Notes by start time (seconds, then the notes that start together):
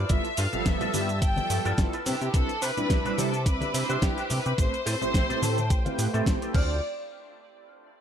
Already playing: E4 F4 A4 B4 A5 E6
0.09 G1 G3 B3 E4 F4 A4 E5, kick, closed hi-hat, cabasa
0.25 closed hi-hat, cabasa
0.37 G2 E4 F4 A4 B4 F5, open hi-hat, cabasa
0.53 G1 F3 G3 B3 A4 E5, closed hi-hat, low conga, cabasa
0.66 G1 E5, kick, snare, closed hi-hat, cabasa
0.81 E4 F4 A4 B4, closed hi-hat, low conga, cabasa
0.93 G2 G3 B3 E4 F4 G4, open hi-hat, high conga, cabasa
1.09 closed hi-hat, cabasa
1.22 G1 G5, muted clean electric guitar stroke, kick, closed hi-hat, cabasa
1.37 F3 G3 B3 A4 E5, closed hi-hat, high conga, cabasa
1.50 G2, open hi-hat, cabasa
1.65 G2 E4 F4 A4 D5, closed hi-hat, cabasa
1.78 G1 G3 B3 E4 F4 A4, kick, snare, closed hi-hat, cabasa
1.93 E4 F4 A4 B4, closed hi-hat, cabasa
2.05 C3 D4 E4 G4 B4 C5 E5 D6, open hi-hat, low conga, cabasa
2.21 C3, closed hi-hat, cabasa
2.34 C2 G3 C4 D4 E4 A4 B4, kick, closed hi-hat, cabasa
2.49 closed hi-hat, cabasa
2.61 C3 D4 E4 B4 C5, open hi-hat, cabasa
2.77 G3 C4 D4 E4 B5, closed hi-hat, low conga, cabasa
2.90 C2, muted clean electric guitar stroke, kick, snare, closed hi-hat, cabasa
3.05 D4 E4 B4 C5, closed hi-hat, low conga, cabasa
3.18 C3 G3 C4 D4 E4 A4, open hi-hat, high conga, cabasa
3.34 closed hi-hat, cabasa
3.46 C2 B4, muted clean electric guitar stroke, kick, closed hi-hat, cabasa
3.61 G3 C4 D4 E4 B5, closed hi-hat, high conga, cabasa
3.74 C3, open hi-hat, cabasa
3.83 C5
3.89 C3 D4 E4 B4 C5, closed hi-hat, cabasa
4.02 C2 G3 C4 D4 E4 G4 B4, kick, snare, closed hi-hat, cabasa
4.17 D4 E4 B4 C5, closed hi-hat, cabasa
4.30 C3, open hi-hat, low conga, cabasa
4.39 B4
4.46 C3, closed hi-hat, cabasa
4.58 A1 A3 C4 E4 G4 B4 C5 G5, kick, closed hi-hat, cabasa
4.74 closed hi-hat, cabasa
4.86 A2 C4 G4 A4 B4, open hi-hat, cabasa
5.01 A1 A3 C4 E4 G4 C5, closed hi-hat, low conga, cabasa
5.14 A1, kick, snare, closed hi-hat, cabasa
5.29 C4 G4 A4 B4, closed hi-hat, low conga, cabasa
5.42 A2 A3 C4 E4 G4 A4 A5, open hi-hat, high conga, cabasa
5.58 closed hi-hat, high conga, cabasa
5.70 A1 G5, muted clean electric guitar stroke, kick, closed hi-hat, cabasa
5.85 A3 C4 E4 G4 B4 F5, closed hi-hat, high conga, cabasa
5.98 A2, open hi-hat, cabasa
6.13 A2 A3 C4 E4 G4 A4 B4 C5 E5, closed hi-hat, cabasa
6.26 A1, kick, snare, closed hi-hat, cabasa
6.41 A3 C4 E4 G4 A4 B4, closed hi-hat, cabasa
6.52 D2 A3 C4 D4 F4 C5 D5, kick, crash, low conga